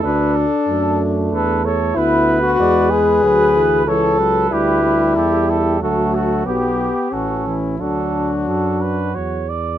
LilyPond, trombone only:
\new Staff \with { instrumentName = "Trombone" } { \clef bass \time 3/4 \key d \major \tempo 4 = 93 a8 r8 a2 | b4 gis4 fis8 e8 | e8 fis8 g8 g4. | fis4. r8 e8 e8 |
fis2~ fis8 r8 | }